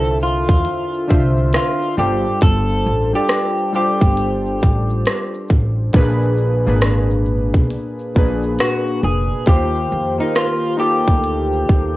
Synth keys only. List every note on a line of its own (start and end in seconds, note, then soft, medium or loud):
0.00 1.07 D3 medium
0.00 1.08 D4 medium
0.00 1.99 E4 medium
0.00 1.10 F4 medium
0.00 0.62 A4 medium
0.00 1.99 A#4 medium
0.00 1.11 C5 loud
0.00 0.62 E5 medium
0.00 1.98 G5 medium
1.07 1.96 D3 medium
1.07 1.97 D4 medium
1.07 1.97 F4 medium
1.07 1.98 C5 medium
1.07 1.97 E5 medium
1.97 2.85 G3 medium
1.97 2.85 D4 medium
1.97 2.86 F4 medium
1.97 2.86 A4 medium
1.97 2.87 C5 medium
3.13 3.58 G3 medium
3.13 3.58 D4 medium
3.13 3.59 F4 medium
3.13 3.59 A4 medium
3.13 3.60 D5 medium
3.73 4.96 G3 medium
3.73 4.97 D4 medium
3.73 4.97 F4 medium
3.73 4.98 A4 medium
3.73 4.98 C5 medium
5.93 6.38 A#2 loud
5.93 6.39 A#3 medium
5.93 6.39 D4 loud
5.93 6.40 G#4 loud
5.93 6.40 B4 loud
6.65 7.66 A#2 medium
6.65 7.66 A#3 medium
6.65 7.67 D4 medium
6.65 7.67 G#4 medium
6.65 7.67 B4 medium
8.15 9.05 A#2 medium
8.15 9.05 A#3 medium
8.15 9.06 D4 medium
8.15 9.06 G#4 medium
8.15 9.06 B4 loud
9.46 9.91 D#3 medium
9.46 9.92 A#3 medium
9.46 9.92 F4 medium
9.46 9.93 G4 medium
9.46 9.93 C5 loud
10.18 10.63 D#3 medium
10.18 10.64 A#3 medium
10.18 10.64 F4 medium
10.18 10.65 G4 medium
10.18 10.65 A#4 medium
10.77 11.97 A#3 medium
10.77 11.97 D#4 medium
10.77 11.97 F4 medium
10.77 11.97 G4 medium
10.77 11.97 A4 medium